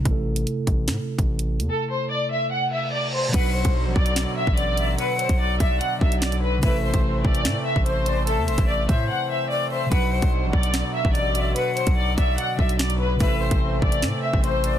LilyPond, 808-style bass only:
\new Staff \with { instrumentName = "808-style bass" } { \clef bass \time 4/4 \key b \phrygian \tempo 4 = 146 a,,4 r8 a,,8 a,16 r8 a,,4 e,16 | r1 | b,,8. b,,8 a,,16 b,,8. r8 a,,4~ a,,16 | r8. b,,8. b,,8 r8 b,,4. |
a,,8. a,,8. a,,8 a,16 r8 a,,4~ a,,16~ | a,,16 e,16 a,,16 a,,8. a,8 r2 | b,,8. b,,8 a,,16 b,,8. r8 a,,4~ a,,16 | r8. b,,8. b,,8 r8 b,,4. |
a,,8. a,,8. a,,8 a,16 r8 a,,4~ a,,16 | }